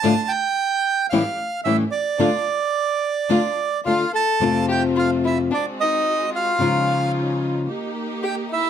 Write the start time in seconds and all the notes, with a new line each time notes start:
Already playing: A5
0.03 A2 D3 A3 D4 F4
0.29 G5
1.10 A2 E3 G3 A3 C#4 E4 G4 F5
1.64 A2 E3 G3 A3 C#4 E4 G4 E5
1.91 D5
2.19 D3 A3 D4 F4
3.29 D3 A3 D4 F4
3.85 D3 A3 D4 F4 F5
4.13 A4 A5
4.40 F2 C3 F3 A3 C4 F4
4.68 G4 G5
4.96 F4 F5
5.24 E4 E5
5.51 G#3 C4 D4 F#4 D5
5.80 D#4 D#5
6.35 F4 F5
6.59 C#3 F3 G#3 C#4 D#4 F4
7.67 A#3 D#4 G4
8.23 G4 G5
8.50 E4 E5